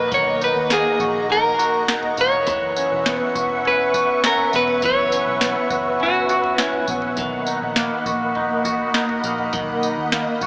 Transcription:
Already playing: picked electric bass A#1, clean electric guitar D#3 A#3 D#4 F#4 B4, string machine A#3 D#5 F#5
0.11 picked electric bass B1, clean electric guitar D#3 C#5, string machine A#5, kick, floor tom, tambourine
0.41 clean electric guitar D#4 B4, tambourine
0.56 picked electric bass D#2
0.70 clean electric guitar A#3 G#4, snare, tambourine
1.00 picked electric bass A#1, clean electric guitar F#4, kick, floor tom, tambourine
1.30 clean electric guitar D#4 A#4, floor tom
1.59 clean electric guitar F#4, tambourine
1.88 clean electric guitar D#4, snare, tambourine
2.03 floor tom
2.17 picked electric bass E1, clean electric guitar A#3 C#5, kick, tambourine
2.32 floor tom
2.47 picked electric bass F#1, clean electric guitar E3, string machine B4 E5 F#5 C#6, kick, floor tom, tambourine
2.76 clean electric guitar C#4, tambourine
2.92 picked electric bass E1
3.06 clean electric guitar B3, snare, tambourine
3.21 clean electric guitar B4
3.35 picked electric bass E1, clean electric guitar F#4, kick, floor tom, tambourine
3.65 clean electric guitar C#4 B4, floor tom
3.94 clean electric guitar F#4, kick, tambourine
4.24 clean electric guitar C#4 A#4, snare, tambourine
4.38 floor tom
4.53 picked electric bass E1, clean electric guitar B3 B4, tambourine
4.68 floor tom
4.82 picked electric bass F#1, clean electric guitar E3 C#5, kick, floor tom, tambourine
5.12 clean electric guitar C#4, tambourine
5.27 picked electric bass B1
5.41 clean electric guitar B3, snare, tambourine
5.70 picked electric bass F#1, clean electric guitar F#4, kick, floor tom, tambourine
6.00 clean electric guitar C#4 F#4, floor tom
6.29 clean electric guitar F#4, tambourine
6.44 floor tom
6.58 clean electric guitar C#4 E4, snare, tambourine
6.73 floor tom
6.88 picked electric bass A#1, clean electric guitar B3, kick, tambourine
7.02 floor tom
7.17 picked electric bass B1, clean electric guitar D#3, string machine A#3 D#5 B5, kick, floor tom, tambourine
7.47 clean electric guitar D#4, tambourine
7.62 picked electric bass A#1
7.76 clean electric guitar A#3, snare, tambourine
8.06 picked electric bass A#1, clean electric guitar F#4, kick, floor tom, tambourine
8.35 clean electric guitar D#4, floor tom
8.65 clean electric guitar F#4, kick, tambourine
8.94 clean electric guitar D#4, snare, tambourine
9.09 floor tom
9.24 picked electric bass A#1, clean electric guitar A#3, tambourine
9.38 floor tom
9.53 picked electric bass B1, clean electric guitar D#3, kick, floor tom, tambourine
9.83 clean electric guitar D#4, tambourine
9.98 picked electric bass D#2
10.12 clean electric guitar A#3, snare, tambourine
10.41 picked electric bass A#1, clean electric guitar F#4, kick, floor tom, tambourine

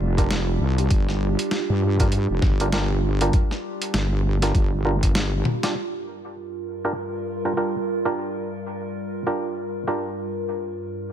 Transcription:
Already playing: ambient pad G3 D4 F4 G4, clav D4 F4 G4 A#4
0.00 wobble bass F1
0.18 clav D4 F4 G4 A#4, kick, closed hi-hat
0.31 snare, closed hi-hat
0.61 wobble bass C2
0.78 closed hi-hat
0.90 wobble bass G1, kick, closed hi-hat
1.09 snare
1.39 closed hi-hat
1.51 snare, closed hi-hat
1.70 wobble bass G2
2.00 clav D4 F4 G4 A#4, kick, closed hi-hat
2.12 closed hi-hat
2.30 wobble bass F1
2.42 wobble bass G1, kick, snare
2.60 clav D4 F4 G4 A#4, closed hi-hat
2.72 clav D4 F4 G4 A#4, snare, closed hi-hat
3.21 clav D4 F4 G4 A#4, closed hi-hat
3.33 kick, closed hi-hat
3.51 snare
3.82 closed hi-hat
3.94 wobble bass G1, snare, closed hi-hat
4.42 clav D4 F4 G4 A#4, snare, closed hi-hat
4.55 wobble bass G1, kick, closed hi-hat
4.85 clav D4 F4 G4 A#4
5.03 kick, closed hi-hat
5.15 snare, closed hi-hat
5.45 mid tom, high tom
5.63 clav D4 F4 G4 D5, snare, closed hi-hat
5.76 ambient pad G2 G3 F4 A#4
6.85 clav D4 F4 G4 A#4
7.45 clav D4 F4 G4 A#4
7.57 clav D4 F4 G4 A#4
8.05 clav D4 F4 G4 A#4
9.27 clav D4 F4 G4 A#4
9.87 clav D4 F4 G4 A#4

